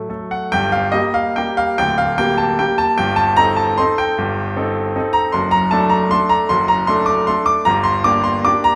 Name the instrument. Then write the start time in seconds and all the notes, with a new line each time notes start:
grand piano
Already playing: A2 F#3 A3 A4 F#5
0.09 F#3 A3 A4
0.31 F#5
0.52 G1 G2 G5
0.72 F5
0.92 G3 A#3 G4 D#5
1.14 F5
1.36 G3 A#3 G4 G5
1.57 F5
1.78 D1 D2 G5
1.98 F5
2.18 G3 A#3 G4 G5
2.38 A5
2.59 G3 A#3 G4 G5
2.78 A5
2.98 G1 G2 G5
3.16 A5
3.37 C4 D#4 A4 A#5
3.56 A5
3.78 C4 D#4 A4 C6
3.98 G5
4.18 G1 G2
4.56 C4 D#4 A4
4.96 C4 D#4 A4
5.13 A#5
5.32 F#1 F#2 C6
5.51 A#5
5.71 A3 D4 A4 A5
5.90 A#5
6.11 A3 D4 A4 C6
6.29 A#5
6.49 F#1 F#2 C6
6.68 A#5
6.87 A3 D4 A4 C6
7.06 D6
7.27 A3 D4 A4 C6
7.46 D6
7.65 G1 G2 A#5
7.84 C6
8.04 A#3 D4 G4 D6
8.24 C6
8.45 A#3 D4 G4 D6
8.64 A#5